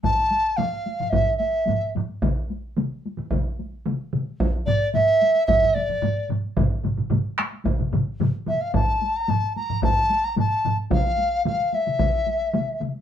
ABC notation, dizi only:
X:1
M:4/4
L:1/16
Q:1/4=110
K:none
V:1 name="Dizi"
a4 f4 e2 e4 z2 | z16 | z2 d2 e4 e2 d4 z2 | z12 z2 e f |
a3 _b a2 b2 a3 b a3 z | f4 f2 e8 z2 |]